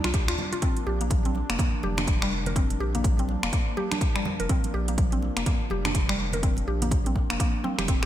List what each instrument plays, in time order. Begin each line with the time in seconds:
Already playing: analog synth pad C3 G3 D4
0.04 analog synth bass C2, synth pluck F4, finger snap, closed hi-hat, high conga
0.14 synth pluck G4, kick, closed hi-hat, muted conga
0.28 analog synth bass D#2, synth pluck F4, finger snap, closed hi-hat
0.38 high conga, low conga
0.53 synth pluck F4, closed hi-hat, muted conga
0.62 analog synth pad F3 A#3, synth pluck C4, kick, closed hi-hat
0.76 closed hi-hat, muted conga
0.87 analog synth bass A#1, synth pluck G4
1.01 synth pluck A#3, closed hi-hat, muted conga
1.10 kick, closed hi-hat, high conga
1.25 synth pluck C4, closed hi-hat, high conga
1.35 muted conga, high conga
1.50 analog synth bass F1, synth pluck A#3, finger snap, closed hi-hat
1.59 synth pluck A#3, kick, closed hi-hat, muted conga, low conga
1.83 analog synth bass F1, synth pluck G4, muted conga, high conga
1.97 synth pluck D4, finger snap, closed hi-hat, low conga
2.07 kick, closed hi-hat, muted conga, high conga
2.22 synth pluck G3, finger snap
2.46 synth pluck A#4, closed hi-hat, muted conga, low conga
2.56 synth pluck C4, kick, closed hi-hat
2.70 closed hi-hat, muted conga
2.80 analog synth bass A#1, synth pluck G4
2.95 synth pluck A#3, closed hi-hat, muted conga, low conga
3.04 kick, closed hi-hat, high conga
3.18 synth pluck C4, closed hi-hat, high conga
3.29 muted conga, high conga
3.43 analog synth bass F1, synth pluck A#3, finger snap, closed hi-hat
3.53 synth pluck A#3, kick, closed hi-hat, muted conga
3.77 synth pluck G4, muted conga, high conga
3.91 synth pluck D4, finger snap, closed hi-hat, high conga
4.01 kick, closed hi-hat
4.16 synth pluck G3, finger snap
4.25 high conga, low conga
4.40 analog synth bass F1, synth pluck A#4, closed hi-hat, muted conga
4.49 synth pluck C4, kick, closed hi-hat
4.64 closed hi-hat, muted conga
4.74 analog synth bass A#1, synth pluck G4
4.88 synth pluck A#3, closed hi-hat, muted conga
4.98 kick, closed hi-hat, high conga
5.12 synth pluck C4, closed hi-hat, high conga
5.22 muted conga, high conga
5.37 analog synth bass F1, synth pluck A#3, finger snap, closed hi-hat
5.46 synth pluck A#3, kick, closed hi-hat, muted conga, low conga
5.70 analog synth bass F1, synth pluck G4, muted conga, high conga
5.85 synth pluck D4, finger snap, closed hi-hat, low conga
5.95 kick, closed hi-hat, muted conga, high conga
6.09 synth pluck G3, finger snap
6.33 synth pluck A#4, closed hi-hat, muted conga, low conga
6.43 synth pluck C4, kick, closed hi-hat
6.57 closed hi-hat, muted conga
6.68 analog synth bass A#1, synth pluck G4
6.82 synth pluck A#3, closed hi-hat, muted conga, low conga
6.91 kick, closed hi-hat, high conga
7.06 synth pluck C4, closed hi-hat, high conga
7.15 kick, muted conga, high conga
7.30 analog synth bass F1, synth pluck A#3, finger snap, closed hi-hat
7.40 synth pluck A#3, kick, closed hi-hat, muted conga
7.64 synth pluck C4, muted conga, high conga
7.78 analog synth bass F1, synth pluck G4, finger snap, closed hi-hat, high conga
7.87 synth pluck C4, kick, closed hi-hat, muted conga
8.03 finger snap